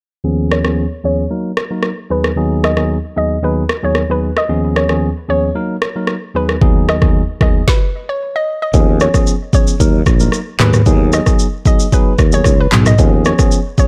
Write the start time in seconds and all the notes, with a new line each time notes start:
0.24 D#2 F3 B3 C#4 G#4
0.52 C#5, cross-stick
0.64 D#2 F3 B3 C#4 G#4, cross-stick
1.04 D#2 F3 B3 C#4 G#4 C#5
1.30 F#3 A#3 D#4 A#4
1.57 cross-stick
1.71 F#3 A#3 D#4 A#4
1.83 cross-stick
2.10 D#2 F#3 B3 D#4 G#4 B4
2.24 cross-stick
2.36 D#2 F#3 B3 D#4 G#4
2.64 D#5, cross-stick
2.77 D#2 F#3 B3 D#4 G#4, cross-stick
3.16 D#2 F#3 B3 D#4 G#4 D#5
3.43 D#2 F#3 B3 D#4 G#4 B4
3.69 cross-stick
3.83 D#2 F#3 B3 D#4 G#4 C#5
3.95 cross-stick
4.09 D#2 F#3 B3 D#4 G#4 B4
4.37 D#5, cross-stick
4.49 D#2 F3 B3 C#4 G#4
4.76 C#5, cross-stick
4.89 D#2 F3 B3 C#4 G#4, cross-stick
5.28 D#2 F3 B3 C#4 G#4 C#5
5.55 F#3 A#3 D#4 A#4
5.82 cross-stick
5.95 F#3 A#3 D#4 A#4
6.07 cross-stick
6.35 D#2 F#3 B3 D#4 G#4 B4
6.49 cross-stick
6.61 D#2 F#3 B3 D#4 G#4, kick
6.89 D#5, cross-stick
7.02 D#2 F#3 B3 D#4 G#4, kick, cross-stick
7.41 D#2 F#3 B3 D#4 G#4 D#5, kick, cross-stick
7.68 B4, kick, snare
8.09 C#5
8.36 D#5
8.62 D#5
8.74 D#2 F3 B3 C#4 G#4, kick, shaker
9.00 C#5, cross-stick, shaker
9.14 F3 B3 C#4 G#4, kick, cross-stick, shaker
9.27 shaker
9.53 F3 B3 C#4 G#4 C#5, kick, shaker
9.67 shaker
9.80 D#2 F#3 A#3 D#4 A#4, kick, shaker
10.06 A#1, kick, cross-stick, shaker
10.20 F#3 A#3 D#4 A#4, shaker
10.32 cross-stick, shaker
10.59 D#2 F#3 B3 D#4 G#4 B4, clap, mid tom, shaker
10.73 cross-stick, mid tom, shaker
10.86 D#2 F#3 B3 D#4 G#4, kick, shaker
11.13 D#5, cross-stick, shaker
11.26 F#3 B3 D#4 G#4, kick, cross-stick, shaker
11.39 shaker
11.65 F#3 B3 D#4 G#4 D#5, kick, shaker
11.80 shaker
11.92 F#3 B3 D#4 G#4 B4, kick, shaker
12.18 D#2, kick, cross-stick, shaker
12.32 F#3 B3 D#4 G#4 C#5, shaker
12.44 C#2, kick, cross-stick, shaker
12.61 B4
12.72 B1 F#3 B3 D#4 G#4, clap, mid tom, shaker
12.86 D#5, cross-stick, mid tom, shaker
12.98 D#2 F3 B3 C#4 G#4, kick, shaker
13.25 C#5, cross-stick, shaker
13.39 F3 B3 C#4 G#4, kick, cross-stick, shaker
13.52 shaker
13.78 F3 B3 C#4 G#4 C#5, kick, shaker